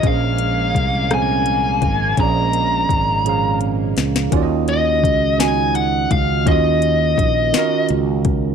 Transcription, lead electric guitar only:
X:1
M:6/8
L:1/8
Q:3/8=56
K:Ebdor
V:1 name="Lead electric guitar"
f3 a3 | b4 z2 | z e2 a g f | e4 z2 |]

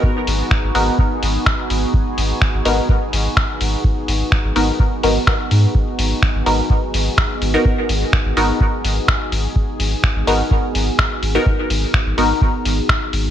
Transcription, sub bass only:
X:1
M:4/4
L:1/16
Q:1/4=126
K:G#m
V:1 name="Sub bass" clef=bass
z2 G,,, z2 G,,, G,,, z3 G,,, z3 G,,, z | z2 G,,, z2 G,,, G,,, z3 G,,, z3 G,,, z | z2 G,,, z2 G,,, G,,, z3 G,,, z3 G,, z | z2 G,,, z2 G,,, G,,, z3 G,,, z3 G,,, z |
z2 G,,, z2 G,,, G,,, z3 G,,, z3 G,,, z | z2 G,,, z2 G,,, G,,, z3 G,,, z3 G,,, z | z2 G,,, z2 G,,, G,,, z3 G,,, z3 G,,, z |]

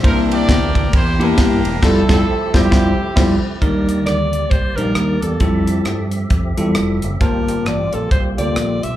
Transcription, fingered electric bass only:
X:1
M:4/4
L:1/8
Q:"Swing" 1/4=134
K:F
V:1 name="Fingered electric bass" clef=bass
C,,2 D,,2 E,,2 G,, E,,, | F,,, F,,, z F,,, F,,, z F,,, z | _E,,2 D,,2 C,, B,,, E,, =E,, | F,,2 G,,2 F,, E,, F,,, _G,,, |
G,,,2 A,,, B,,, C,, D,, B,,, =B,,, |]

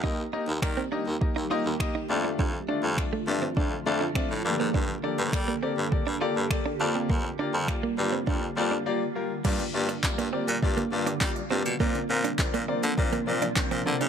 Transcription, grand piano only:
X:1
M:4/4
L:1/16
Q:1/4=102
K:Gm
V:1 name="Grand piano"
[B,EGe] z [B,EGe] z [B,EGd] z [B,EGe] z [B,EGe] z [B,EGe] z [B,EGe] z [A,DFd]2- | [A,DFd]2 [A,DFd] z [A,DFd] z [A,DFd] z [A,DFd] z [A,DFd] z [A,DFd] z [B,GAd]2- | [B,GAd]2 [B,GAd] z [B,GAd] z [B,GAd] z [B,GAd] z [B,GAd] z [B,GAd] z [B,FGd]2- | [B,FGd]2 [B,FGd] z [B,FGd] z [B,FGd] z [B,FGd] z [B,FGd] z [B,FGd] z [B,FGB] z |
[B,FGd] z [B,FGd] z [B,FGd] z [B,FGd] z [B,FGd] z [B,FGd] z [B,FGd] z [B,FGd] z | [CFBd] z [CFBf] z [CFBd] z [CFBd] z [CFBd] z [CFBd] z [CFBc] z [CFBd] z |]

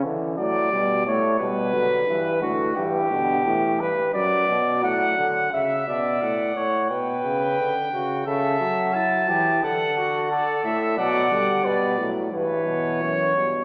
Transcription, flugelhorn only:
X:1
M:4/4
L:1/8
Q:1/4=88
K:D
V:1 name="Flugelhorn"
z d2 c B3 F | G3 B d2 f2 | e d2 c B3 F | A2 E G A F A2 |
[K:Bm] d2 B z B2 c2 |]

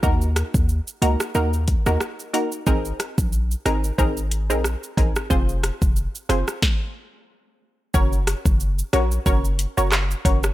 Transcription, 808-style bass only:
X:1
M:4/4
L:1/16
Q:"Swing 16ths" 1/4=91
K:Gblyd
V:1 name="808-style bass" clef=bass
E,,3 E,,2 z D,, z E,,3 E,, z4 | A,,,2 z B,,,3 A,,,2 A,,,3 B,,,2 z A,,, z | F,,,3 F,,,2 z G,,, z8 z | G,,,3 G,,,3 B,,,2 G,,,3 G,,,3 G,,,2 |]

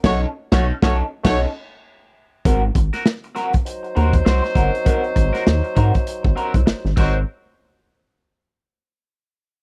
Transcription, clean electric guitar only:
X:1
M:4/4
L:1/16
Q:"Swing 16ths" 1/4=100
K:Abmix
V:1 name="Clean electric guitar"
[^C^D=A]2 z [CDA]2 [CDA]2 z [CDA]2 z6 | [CGB] z2 [CGB] z2 [CGB] z3 [CGB] z [CGc] z [CGB] z | [CGB] z2 [CGB] z2 [CGB] z3 [CGB] z3 [CGB] z | z16 |]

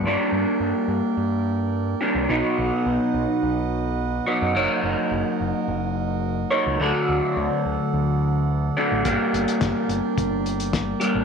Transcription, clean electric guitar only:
X:1
M:4/4
L:1/8
Q:1/4=107
K:G
V:1 name="Clean electric guitar"
[G,_B,DG]6- [G,B,DG] [G,B,DG] | [B,,F,B,^DF]6- [B,,F,B,DF] [B,,F,B,DF] | [F,^A,^D^A^c]6- [F,A,DAc] [F,A,DAc] | [D,F,A,DFd]6- [D,F,A,DFd] [D,F,A,DFd] |
[G,_B,DG]6- [G,B,DG] [G,B,DG] |]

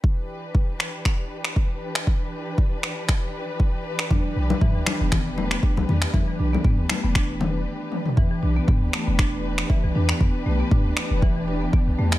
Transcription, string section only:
X:1
M:4/4
L:1/8
Q:"Swing 16ths" 1/4=118
K:Em
V:1 name="String section"
[E,DGB]8- | [E,DGB]8- | [E,DGB]8- | [E,DGB]8 |
[E,DGB]8- | [E,DGB]8 |]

